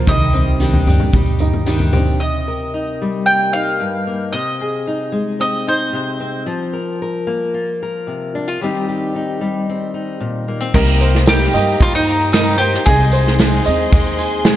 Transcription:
0.07 C2 C3 D#3 G3 D#4 G4 D#5, kick, floor tom, tambourine
0.20 tambourine
0.33 C4, floor tom, tambourine
0.60 C3 D#3 G3 D4 D#4 G4, tambourine
0.73 floor tom, tambourine
0.87 G2 D4 D#4 G4, floor tom, tambourine
1.00 floor tom
1.13 G2 G3 D#4 G4, kick, floor tom, mid tom, tambourine
1.26 tambourine
1.39 D#4, floor tom, tambourine
1.53 floor tom, tambourine
1.66 C3 D#3 G3 D4 D#4 G4, tambourine
1.79 floor tom, tambourine
1.92 C4 D4 D#4 G4, floor tom, mid tom, tambourine
2.06 tambourine
2.20 C3 D#5
2.48 A#4
2.74 D#4
3.02 G3
3.26 A#3 G5
3.53 D#4 F5
3.81 G2
4.07 A#3
4.33 C3 D#5
4.61 G#4
4.87 D#4
5.12 G#3
5.40 C4 D#5
5.68 D#4 C5
5.93 C3
6.20 C4
6.46 F3
6.73 A#4
7.02 A#4
7.27 A#3
7.54 F4
7.83 A#4
8.07 C3
8.35 D4
8.48 F4
8.61 D#3 G3 C4 D#4 G4
8.89 G4
9.15 D#4
9.41 G3
9.69 C4
9.94 D#4
10.21 A#2
10.48 A#3
10.61 C4
10.73 C2 C3 G3 A#3 C4 D#4 G4 A#4 C5 D#5 A#5, kick, crash
10.87 tambourine
11.00 C5, open hi-hat, tambourine
11.15 snare
11.26 C3 G3 A#3 D#4 G4 A#4, snare, open hi-hat, tambourine
11.41 snare
11.52 G2 D#4 G4 D#5, open hi-hat, tambourine
11.57 A#3
11.80 G2 G3 A#3 D#4 F4 G4, kick, open hi-hat
11.93 D#4, tambourine
12.06 A#5, open hi-hat, tambourine
12.20 tambourine
12.32 C3 G3 A#3 D#4 G4 A#4, snare, open hi-hat, tambourine
12.45 tambourine
12.58 A#3 D#4 G4 C5, open hi-hat
12.74 snare
12.85 C2 C3 G#3 C4 D#4 G#4 C5 D#5, kick, open hi-hat
12.90 C6
13.00 tambourine
13.11 C5, open hi-hat, tambourine
13.27 snare
13.38 C3 G#3 C4 D#4 G#4, snare, open hi-hat, tambourine
13.64 D#2 C4 D#4 G#4 D#5, open hi-hat, tambourine
13.92 D#2 G#3 C4 D#4 G#4, kick, open hi-hat
14.06 tambourine
14.19 G#5, open hi-hat, tambourine
14.32 tambourine
14.45 C3 G#3 C4 D#4 G#4, snare, open hi-hat, tambourine

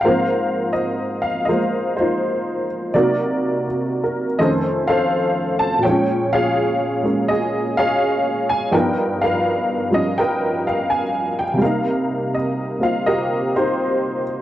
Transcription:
0.01 G#2 F3 A#4 C5 F5
0.05 A#3 C4
0.73 D#5
1.22 F5
1.45 F3 A#4 D#5
1.49 G#3 A#3 C5
1.97 D#4 F4 C5
2.94 C3 F#3 A#3 D#4 F#4 A#4 D5
3.68 F#4
4.04 A#4
4.39 F2 D#3 A3 C#4 A4 C5 D#5
4.88 A4 C5 F5
5.59 A5
5.79 A#2 F3
5.83 G#3 C#5 G5
5.89 C#4
6.33 G#4 C#5 F5
7.03 G#3 A#3 C#4
7.28 G#4 D#5
7.77 G#4 C#5 F5
8.49 G#5
8.71 G2 F3 B3 D#4 A#4 B4 G5
9.22 A#4 B4 F5
9.90 F3 G3 C#4 D#5
10.18 A#4 B4 G5
10.67 F5
10.90 G#5
11.39 G5
11.54 C3
11.58 G3 A#3 F5
11.62 D#4 A#4
12.34 D#5
12.80 A#3 C4 F4 F5
13.06 G4 A#4 D#5
13.56 D#4 G4 C5

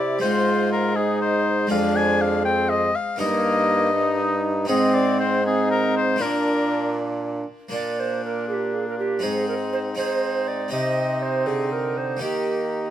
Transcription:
Already playing: C3 C4 E4 G4 D5
0.19 G#2 G#3 C4 D#4 F4 G#4 C5
0.72 A#4
0.96 D#4 G#4
1.22 C5
1.67 F2 G#3 C4 D4 F4 G#4
1.71 F2 F5
1.96 G#5
2.21 F5
2.45 C4 G5
2.69 D#5
2.96 F5
3.16 G2 A#3 D#4 A#4
3.21 D#5
3.94 D#4
4.65 G#2 C4 D#4 G#4
4.69 C4 D#5
4.95 D5
5.20 C5
5.44 C4 D#4 G#4
5.71 A#4
5.97 C5
6.16 A#2 A#3 D4 F4
6.21 D4 D#4 A#4
7.69 A#2 A#3 D4 F4
7.73 D4 D5
8.00 C5
8.25 A#4
8.49 G#4
8.53 G4
8.74 G#4
8.88 A#4
8.99 G4
9.19 G#2 C4 D#4 G#4
9.23 G#2 C4 G#4
9.48 A#4
9.73 C5
9.95 C4 D#4 G#4 C5
10.48 D5
10.68 C3 C4 D#4 G4 D#5
11.23 C5
11.46 C3 D3 G#4
11.72 A#4
11.97 C5
12.17 D#3 A#3 D#4 G4
12.21 D#3 A#3 D#4 G4

